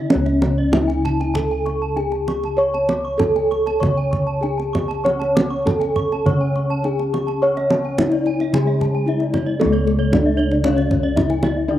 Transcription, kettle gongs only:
0, 0, Header, 1, 2, 480
1, 0, Start_track
1, 0, Tempo, 618557
1, 78, Time_signature, 4, 2, 24, 8
1, 3919, Tempo, 598205
1, 5359, Tempo, 556070
1, 7279, Tempo, 525394
1, 9760, End_track
2, 0, Start_track
2, 0, Title_t, "Kettle gongs"
2, 0, Program_c, 0, 14
2, 0, Note_on_c, 0, 49, 63
2, 80, Note_on_c, 0, 61, 64
2, 117, Note_on_c, 0, 37, 91
2, 523, Note_off_c, 0, 49, 0
2, 1488, Note_off_c, 0, 61, 0
2, 1522, Note_on_c, 0, 62, 44
2, 1584, Note_off_c, 0, 62, 0
2, 2002, Note_on_c, 0, 73, 71
2, 2481, Note_on_c, 0, 62, 50
2, 2543, Note_off_c, 0, 62, 0
2, 2947, Note_off_c, 0, 37, 0
2, 2959, Note_on_c, 0, 49, 61
2, 3409, Note_off_c, 0, 73, 0
2, 3443, Note_on_c, 0, 62, 47
2, 3506, Note_off_c, 0, 62, 0
2, 3919, Note_on_c, 0, 73, 69
2, 4378, Note_off_c, 0, 49, 0
2, 4408, Note_on_c, 0, 62, 42
2, 4472, Note_off_c, 0, 62, 0
2, 4889, Note_on_c, 0, 49, 61
2, 5328, Note_off_c, 0, 73, 0
2, 5361, Note_on_c, 0, 62, 46
2, 5430, Note_off_c, 0, 62, 0
2, 5862, Note_on_c, 0, 73, 70
2, 6305, Note_off_c, 0, 49, 0
2, 6344, Note_on_c, 0, 62, 41
2, 6413, Note_off_c, 0, 62, 0
2, 6812, Note_on_c, 0, 49, 67
2, 7249, Note_off_c, 0, 73, 0
2, 7282, Note_on_c, 0, 62, 42
2, 7355, Note_off_c, 0, 62, 0
2, 7761, Note_on_c, 0, 69, 71
2, 7809, Note_on_c, 0, 37, 107
2, 8205, Note_off_c, 0, 49, 0
2, 8239, Note_on_c, 0, 62, 42
2, 8312, Note_off_c, 0, 62, 0
2, 9163, Note_off_c, 0, 69, 0
2, 9194, Note_on_c, 0, 62, 50
2, 9267, Note_off_c, 0, 62, 0
2, 9669, Note_on_c, 0, 62, 78
2, 9760, Note_off_c, 0, 37, 0
2, 9760, Note_off_c, 0, 62, 0
2, 9760, End_track
0, 0, End_of_file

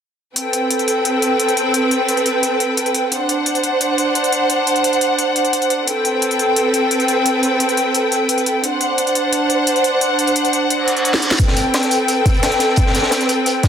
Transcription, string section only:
0, 0, Header, 1, 2, 480
1, 0, Start_track
1, 0, Tempo, 344828
1, 501, Time_signature, 4, 2, 24, 8
1, 19045, End_track
2, 0, Start_track
2, 0, Title_t, "String section"
2, 0, Program_c, 0, 48
2, 503, Note_on_c, 0, 69, 63
2, 504, Note_on_c, 0, 60, 69
2, 504, Note_on_c, 0, 71, 63
2, 505, Note_on_c, 0, 79, 74
2, 4304, Note_off_c, 0, 60, 0
2, 4304, Note_off_c, 0, 69, 0
2, 4304, Note_off_c, 0, 71, 0
2, 4305, Note_off_c, 0, 79, 0
2, 4343, Note_on_c, 0, 78, 77
2, 4345, Note_on_c, 0, 72, 66
2, 4346, Note_on_c, 0, 62, 70
2, 8144, Note_off_c, 0, 78, 0
2, 8145, Note_off_c, 0, 62, 0
2, 8145, Note_off_c, 0, 72, 0
2, 8181, Note_on_c, 0, 79, 78
2, 8182, Note_on_c, 0, 71, 65
2, 8185, Note_on_c, 0, 60, 69
2, 8185, Note_on_c, 0, 69, 64
2, 11983, Note_off_c, 0, 71, 0
2, 11983, Note_off_c, 0, 79, 0
2, 11985, Note_off_c, 0, 60, 0
2, 11985, Note_off_c, 0, 69, 0
2, 12023, Note_on_c, 0, 62, 72
2, 12023, Note_on_c, 0, 72, 65
2, 12024, Note_on_c, 0, 78, 81
2, 15824, Note_off_c, 0, 62, 0
2, 15824, Note_off_c, 0, 72, 0
2, 15824, Note_off_c, 0, 78, 0
2, 15860, Note_on_c, 0, 69, 64
2, 15862, Note_on_c, 0, 60, 71
2, 15863, Note_on_c, 0, 71, 66
2, 15863, Note_on_c, 0, 79, 78
2, 19045, Note_off_c, 0, 60, 0
2, 19045, Note_off_c, 0, 69, 0
2, 19045, Note_off_c, 0, 71, 0
2, 19045, Note_off_c, 0, 79, 0
2, 19045, End_track
0, 0, End_of_file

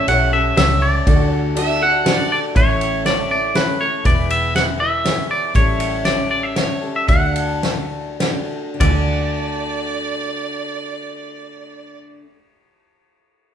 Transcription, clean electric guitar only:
0, 0, Header, 1, 2, 480
1, 0, Start_track
1, 0, Key_signature, 2, "major"
1, 0, Tempo, 497512
1, 1033, Time_signature, 3, 2, 24, 8
1, 5836, Tempo, 526778
1, 7276, Tempo, 588235
1, 8236, Tempo, 624350
1, 11880, End_track
2, 0, Start_track
2, 0, Title_t, "Clean electric guitar"
2, 0, Program_c, 0, 27
2, 83, Note_on_c, 0, 78, 106
2, 315, Note_off_c, 0, 78, 0
2, 319, Note_on_c, 0, 76, 106
2, 544, Note_off_c, 0, 76, 0
2, 555, Note_on_c, 0, 76, 104
2, 792, Note_on_c, 0, 74, 89
2, 801, Note_off_c, 0, 76, 0
2, 1762, Note_on_c, 0, 78, 122
2, 2191, Note_off_c, 0, 74, 0
2, 2236, Note_off_c, 0, 78, 0
2, 2240, Note_on_c, 0, 74, 93
2, 2303, Note_off_c, 0, 74, 0
2, 2476, Note_on_c, 0, 73, 94
2, 2949, Note_off_c, 0, 73, 0
2, 2953, Note_on_c, 0, 74, 91
2, 3185, Note_off_c, 0, 74, 0
2, 3196, Note_on_c, 0, 74, 91
2, 3432, Note_on_c, 0, 71, 74
2, 3440, Note_off_c, 0, 74, 0
2, 3672, Note_on_c, 0, 73, 87
2, 3678, Note_off_c, 0, 71, 0
2, 3914, Note_off_c, 0, 73, 0
2, 3918, Note_on_c, 0, 74, 86
2, 4154, Note_off_c, 0, 74, 0
2, 4158, Note_on_c, 0, 76, 84
2, 4394, Note_off_c, 0, 76, 0
2, 4397, Note_on_c, 0, 78, 92
2, 4461, Note_off_c, 0, 78, 0
2, 4632, Note_on_c, 0, 76, 95
2, 5078, Note_off_c, 0, 76, 0
2, 5122, Note_on_c, 0, 74, 83
2, 5357, Note_off_c, 0, 74, 0
2, 5361, Note_on_c, 0, 73, 74
2, 5835, Note_off_c, 0, 73, 0
2, 5839, Note_on_c, 0, 74, 79
2, 6061, Note_off_c, 0, 74, 0
2, 6072, Note_on_c, 0, 74, 80
2, 6186, Note_off_c, 0, 74, 0
2, 6186, Note_on_c, 0, 76, 84
2, 6302, Note_off_c, 0, 76, 0
2, 6302, Note_on_c, 0, 73, 79
2, 6658, Note_off_c, 0, 73, 0
2, 6667, Note_on_c, 0, 76, 82
2, 6779, Note_off_c, 0, 76, 0
2, 6783, Note_on_c, 0, 78, 74
2, 7446, Note_off_c, 0, 78, 0
2, 7446, Note_on_c, 0, 76, 74
2, 7710, Note_off_c, 0, 76, 0
2, 8234, Note_on_c, 0, 74, 66
2, 10673, Note_off_c, 0, 74, 0
2, 11880, End_track
0, 0, End_of_file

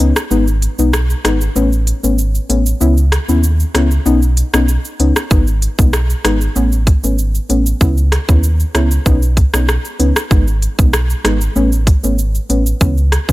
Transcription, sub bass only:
0, 0, Header, 1, 2, 480
1, 0, Start_track
1, 0, Tempo, 625000
1, 237, Time_signature, 4, 2, 24, 8
1, 10233, End_track
2, 0, Start_track
2, 0, Title_t, "Sub bass"
2, 0, Program_c, 0, 38
2, 0, Note_on_c, 0, 37, 105
2, 96, Note_off_c, 0, 37, 0
2, 237, Note_on_c, 0, 32, 107
2, 521, Note_off_c, 0, 32, 0
2, 605, Note_on_c, 0, 35, 90
2, 877, Note_off_c, 0, 35, 0
2, 958, Note_on_c, 0, 32, 93
2, 1143, Note_off_c, 0, 32, 0
2, 1198, Note_on_c, 0, 33, 103
2, 1481, Note_off_c, 0, 33, 0
2, 1565, Note_on_c, 0, 32, 93
2, 1837, Note_off_c, 0, 32, 0
2, 1917, Note_on_c, 0, 33, 89
2, 2103, Note_off_c, 0, 33, 0
2, 2158, Note_on_c, 0, 37, 110
2, 2441, Note_off_c, 0, 37, 0
2, 2525, Note_on_c, 0, 39, 87
2, 2797, Note_off_c, 0, 39, 0
2, 2878, Note_on_c, 0, 37, 98
2, 3063, Note_off_c, 0, 37, 0
2, 3118, Note_on_c, 0, 35, 109
2, 3401, Note_off_c, 0, 35, 0
2, 3484, Note_on_c, 0, 35, 91
2, 3670, Note_off_c, 0, 35, 0
2, 3837, Note_on_c, 0, 37, 103
2, 3936, Note_off_c, 0, 37, 0
2, 4077, Note_on_c, 0, 32, 107
2, 4361, Note_off_c, 0, 32, 0
2, 4444, Note_on_c, 0, 35, 91
2, 4717, Note_off_c, 0, 35, 0
2, 4797, Note_on_c, 0, 32, 98
2, 4982, Note_off_c, 0, 32, 0
2, 5038, Note_on_c, 0, 33, 100
2, 5321, Note_off_c, 0, 33, 0
2, 5405, Note_on_c, 0, 32, 87
2, 5677, Note_off_c, 0, 32, 0
2, 5758, Note_on_c, 0, 33, 87
2, 5943, Note_off_c, 0, 33, 0
2, 5997, Note_on_c, 0, 37, 108
2, 6281, Note_off_c, 0, 37, 0
2, 6365, Note_on_c, 0, 39, 91
2, 6637, Note_off_c, 0, 39, 0
2, 6718, Note_on_c, 0, 37, 95
2, 6903, Note_off_c, 0, 37, 0
2, 6958, Note_on_c, 0, 35, 111
2, 7241, Note_off_c, 0, 35, 0
2, 7325, Note_on_c, 0, 35, 91
2, 7510, Note_off_c, 0, 35, 0
2, 7677, Note_on_c, 0, 37, 103
2, 7776, Note_off_c, 0, 37, 0
2, 7918, Note_on_c, 0, 32, 107
2, 8201, Note_off_c, 0, 32, 0
2, 8284, Note_on_c, 0, 35, 80
2, 8557, Note_off_c, 0, 35, 0
2, 8638, Note_on_c, 0, 32, 99
2, 8823, Note_off_c, 0, 32, 0
2, 8877, Note_on_c, 0, 33, 99
2, 9161, Note_off_c, 0, 33, 0
2, 9245, Note_on_c, 0, 32, 84
2, 9517, Note_off_c, 0, 32, 0
2, 9598, Note_on_c, 0, 33, 89
2, 9783, Note_off_c, 0, 33, 0
2, 9838, Note_on_c, 0, 37, 115
2, 10121, Note_off_c, 0, 37, 0
2, 10205, Note_on_c, 0, 39, 86
2, 10233, Note_off_c, 0, 39, 0
2, 10233, End_track
0, 0, End_of_file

